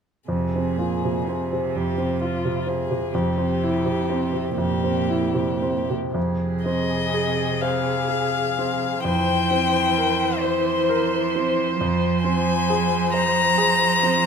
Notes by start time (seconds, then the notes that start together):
0.28 F2 C3 G#4
0.56 C4
0.78 A#2 F4
1.04 C3
1.25 C3 C4
1.53 C3
1.75 F2 G4
1.98 C4
2.22 F4
2.45 C3
2.67 C4 G#4
2.91 C3
3.10 C3
3.14 F2 G4
3.38 C4
3.63 E4
3.86 C3
4.10 C4
4.33 C3
4.57 F2 A#2 G4
4.84 C4
5.09 E4
5.34 C3
5.62 C4
5.90 C3
6.13 F2 C3 G#4
6.65 C4 D#5
7.14 G#4
7.62 C5 F5
8.09 G#4
8.59 C4
9.04 F2 E3 C5 G5
9.51 C4
9.98 A#4
10.42 C5
10.89 A#4
11.36 C4
11.80 F2 F3
12.24 C4 G#5
12.70 G#4
13.13 C5 A#5
13.58 G#4
14.03 C4